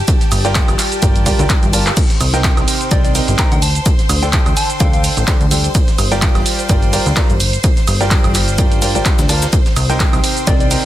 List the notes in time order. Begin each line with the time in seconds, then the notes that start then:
Already playing: G4 A5
0.08 kick, closed hi-hat, ride, shaker
0.21 snare, closed hi-hat, shaker
0.32 G1, open hi-hat, ride, high woodblock, shaker
0.45 G3 F4 A#4 D5 G5, snare, closed hi-hat, shaker
0.55 kick, snare, clap, closed hi-hat, ride, shaker
0.68 G1, closed hi-hat, high woodblock, shaker
0.79 clap, open hi-hat, ride, shaker
0.92 closed hi-hat, shaker
1.02 G1 G3 F4 A#4 D5 G5, kick, closed hi-hat, ride, shaker
1.16 closed hi-hat, shaker
1.26 G3 F4 A#4 D5 G5, kick, open hi-hat, ride, shaker
1.39 D2 G3 F4 A#4 D5 G5, closed hi-hat, shaker
1.50 kick, snare, clap, closed hi-hat, ride, shaker
1.63 G1, closed hi-hat, shaker
1.73 F4 A#4 D5 A5, open hi-hat, ride, shaker
1.86 snare, clap, closed hi-hat, shaker
1.97 C5 C6, kick, closed hi-hat, crash, ride, shaker
2.10 snare, closed hi-hat, shaker
2.21 C2, open hi-hat, ride, high woodblock, shaker
2.34 C3 D#4 A#4 C5 G5, snare, closed hi-hat, shaker
2.44 kick, snare, clap, closed hi-hat, ride, shaker
2.57 C2, snare, closed hi-hat, high woodblock, shaker
2.68 open hi-hat, ride, shaker
2.81 closed hi-hat, shaker
2.91 C2 C3 D#4 A#4 C5 D5 G5, kick, closed hi-hat, ride, shaker
3.04 D5, closed hi-hat, shaker
3.15 C3 D#4 A#4 C5 G5, open hi-hat, ride, shaker
3.28 G1, closed hi-hat, shaker
3.38 D#4 A#4 C5 G5 A#5, kick, snare, clap, closed hi-hat, ride, shaker
3.52 D2 G5, closed hi-hat, shaker
3.62 A5, open hi-hat, ride, shaker
3.75 closed hi-hat, shaker
3.86 kick, closed hi-hat, ride, shaker
3.99 snare, closed hi-hat, shaker
4.09 D2, open hi-hat, ride, high woodblock, shaker
4.22 D3 D4 A4 C5 G5, snare, closed hi-hat, shaker
4.33 kick, snare, clap, closed hi-hat, ride, shaker
4.46 D2, closed hi-hat, high woodblock, shaker
4.57 A5, open hi-hat, ride, shaker
4.70 closed hi-hat, shaker
4.80 D2 D3 D4 A4 C5 F5 G5, kick, closed hi-hat, ride, shaker
4.93 F5, closed hi-hat, shaker
5.04 open hi-hat, ride, shaker
5.17 A1, closed hi-hat, shaker
5.27 D3 D4 A4 C5 G5, kick, snare, clap, closed hi-hat, ride, shaker
5.41 D2, closed hi-hat, shaker
5.51 G3 D4 A4 C5 G5, open hi-hat, ride, shaker
5.64 closed hi-hat, shaker
5.75 kick, closed hi-hat, ride, shaker
5.88 snare, closed hi-hat, shaker
5.98 G1, open hi-hat, ride, high woodblock, shaker
6.12 G3 F4 A#4 D5 G5, snare, closed hi-hat, shaker
6.22 kick, snare, clap, closed hi-hat, ride, shaker
6.35 G1, snare, closed hi-hat, high woodblock, shaker
6.46 open hi-hat, ride, shaker
6.59 closed hi-hat, shaker
6.69 G1 G3 F4 A#4 D5 G5, kick, closed hi-hat, ride, shaker
6.82 closed hi-hat, shaker
6.93 G3 F4 A#4 D5 G5, open hi-hat, ride, shaker
7.06 D2, closed hi-hat, shaker
7.16 G3 F4 A#4 D5 A#5, kick, snare, clap, closed hi-hat, ride, shaker
7.30 G1, closed hi-hat, shaker
7.40 open hi-hat, ride, shaker
7.53 closed hi-hat, shaker
7.64 kick, closed hi-hat, ride, shaker
7.77 snare, closed hi-hat, shaker
7.88 G1, open hi-hat, ride, high woodblock, shaker
8.01 G3 F4 A#4 D5 G5, snare, closed hi-hat, shaker
8.11 kick, snare, clap, closed hi-hat, ride, shaker
8.24 G1, closed hi-hat, high woodblock, shaker
8.35 clap, open hi-hat, ride, shaker
8.48 closed hi-hat, shaker
8.58 G2 G3 F4 A#4 D5 G5, kick, closed hi-hat, ride, shaker
8.72 closed hi-hat, shaker
8.82 G3 F4 A#4 D5 G5, open hi-hat, ride, shaker
8.95 G1 G3 F4 A#4 D5 G5, closed hi-hat, shaker
9.05 kick, snare, clap, closed hi-hat, ride, shaker
9.19 D2, snare, closed hi-hat, shaker
9.29 F4 A#4 D5 A5, snare, open hi-hat, ride, shaker
9.42 snare, closed hi-hat, shaker
9.53 kick, closed hi-hat, ride, shaker
9.66 snare, closed hi-hat, shaker
9.76 C2, open hi-hat, ride, high woodblock, shaker
9.90 C3 D#4 A#4 C5 G5, snare, closed hi-hat, shaker
10.00 kick, snare, clap, closed hi-hat, ride, shaker
10.13 C2, snare, closed hi-hat, high woodblock, shaker
10.24 open hi-hat, ride, shaker
10.37 closed hi-hat, shaker
10.47 C2 C3 D#4 A#4 C5 D5 G5, kick, closed hi-hat, ride, shaker
10.60 D5, closed hi-hat, shaker
10.71 C3 D#4 A#4 C5 G5, open hi-hat, ride, shaker